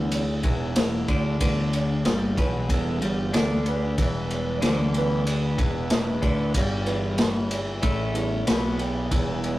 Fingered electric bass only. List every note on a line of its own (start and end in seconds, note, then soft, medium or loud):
0.00 0.41 D2 medium
0.44 1.05 E1 loud
1.09 1.39 D2 loud
1.41 2.01 D2 loud
2.05 2.35 G1 medium
2.38 2.67 B1 medium
2.70 2.99 E1 medium
3.02 3.32 G1 loud
3.35 3.94 D2 loud
3.98 4.58 E1 medium
4.63 5.55 D2 medium
5.59 6.19 E1 medium
6.23 6.53 D2 medium
6.55 7.79 G1 medium
7.83 8.44 A1 medium
8.48 9.08 B1 loud
9.12 9.59 E1 loud